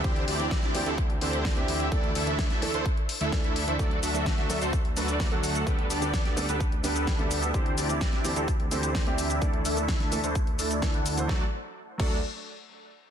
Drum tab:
CC |----------------|----------------|----------------|----------------|
HH |xxoxxxoxxxoxoxox|xxoxxxoxxxoxxxox|xxoxxxoxxxoxoxox|xxoxxxoxxxoxxxox|
SH |----------------|----------------|x-xxx-xxx-xxx-xx|x-xxx-xxx-xxx-xx|
SD |----oo------o---|----oo------o---|----oo------o---|----oo------o---|
BD |o---o---o---o---|o---o---o---o---|o---o---o---o---|o---o---o---o---|

CC |----------------|----------------|------x---------|
HH |xxoxxxoxxxoxoxox|xxoxxxoxxxoxxxox|----------------|
SH |x-xxx-xxx-xxx-xx|x-xxx-xxx-xxx-xx|----------------|
SD |----oo------o---|----oo------o---|o---------------|
BD |o---o---o---o---|o---o---o---o---|o-----o---------|